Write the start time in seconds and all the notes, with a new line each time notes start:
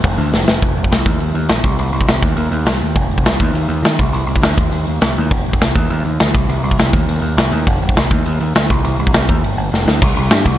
0.04 F1, kick, open hi-hat
0.18 D2
0.32 F1, snare
0.48 F1, snare
0.62 F1, kick, open hi-hat
0.77 F1, open hi-hat
0.84 kick
0.92 C2, snare, open hi-hat
1.06 D#2, kick, open hi-hat
1.20 D#2, open hi-hat
1.35 D#2, open hi-hat
1.49 A#1, snare, open hi-hat
1.64 C2, kick, open hi-hat
1.79 C2, open hi-hat
1.92 C2, open hi-hat
2.01 kick
2.08 C2, snare, open hi-hat
2.23 D#2, kick, open hi-hat
2.36 D#2, open hi-hat
2.51 D#2, open hi-hat
2.66 C2, snare, open hi-hat
2.81 D#2, open hi-hat
2.96 F1, kick, open hi-hat
3.10 F1, open hi-hat
3.18 kick
3.24 C2, snare, open hi-hat
3.40 D#2, kick, open hi-hat
3.53 D#2, open hi-hat
3.68 D#2, open hi-hat
3.83 D#3, snare, open hi-hat
3.99 C2, kick, open hi-hat
4.13 C2, open hi-hat
4.27 C2, open hi-hat
4.36 kick
4.43 D2, snare, open hi-hat
4.58 D#2, kick, open hi-hat
4.72 D#2, open hi-hat
4.87 D#2, open hi-hat
5.01 C2, snare, open hi-hat
5.17 D#2, open hi-hat
5.31 F1, kick, open hi-hat
5.46 F1, open hi-hat
5.53 kick
5.61 C2, snare, open hi-hat
5.76 D#2, kick, open hi-hat
5.90 D#2, open hi-hat
6.05 D#2, open hi-hat
6.20 D2, snare, open hi-hat
6.35 C2, kick, open hi-hat
6.49 C2, open hi-hat
6.63 C2, open hi-hat
6.71 kick
6.79 C2, snare, open hi-hat
6.93 D#2, kick, open hi-hat
7.08 D#2, open hi-hat
7.22 D#2, open hi-hat
7.37 C2, snare, open hi-hat
7.51 D#2, open hi-hat
7.67 F1, kick, open hi-hat
7.82 F1, open hi-hat
7.89 kick
7.97 C2, snare, open hi-hat
8.11 D#2, kick, open hi-hat
8.26 D#2, open hi-hat
8.40 D#2, open hi-hat
8.55 D2, snare, open hi-hat
8.70 C2, kick, open hi-hat
8.84 C2, open hi-hat
8.99 C2, open hi-hat
9.07 kick
9.13 C2, snare, open hi-hat
9.29 D#2, kick, open hi-hat
9.43 G1, open hi-hat
9.57 G1, open hi-hat
9.72 F1, snare
9.86 D2, snare
10.02 C2, kick, crash
10.17 C2
10.30 G2, snare, open hi-hat
10.45 C2, kick